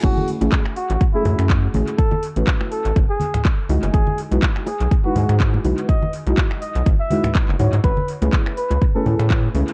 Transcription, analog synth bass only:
X:1
M:4/4
L:1/16
Q:"Swing 16ths" 1/4=123
K:F#dor
V:1 name="Analog synth bass" clef=bass
F,,, z2 A,,, z3 A,,, z2 F,, F,,2 z A,,, z | z3 A,,, z3 A,,, F,,, z4 z C,, F,,, | G,,, z2 B,,, z3 B,,, z2 G,, G,,2 z B,,, z | z3 B,,, z3 B,,, G,,, z4 F,,, G,, G,, |
A,,, z2 C,, z3 C,, z2 A,, A,,2 z C,, z |]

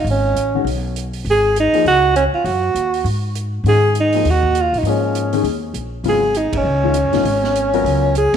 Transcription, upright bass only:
X:1
M:4/4
L:1/8
Q:"Swing" 1/4=200
K:G#dor
V:1 name="Upright bass" clef=bass
G,,,2 =A,,,2 B,,,4 | G,,,3 z C,,3 z | F,,2 D,,2 G,,4 | G,,4 D,,3 A,,, |
G,,4 D,,2 A,,,2 | G,,,3 =G,,, C,,2- (3C,, F,, A,,, | G,,,4 C,,3 D,, |]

